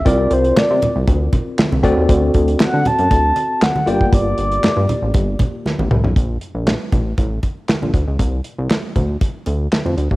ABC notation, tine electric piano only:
X:1
M:4/4
L:1/8
Q:1/4=118
K:Cmix
V:1 name="Tine electric piano"
[CFBd]6- [CFBd] [C^FAd]- | [C^FAd]6- [CFAd] [B,=FGd]- | [B,FGd]6- [B,FGd] z | z8 |
z8 |]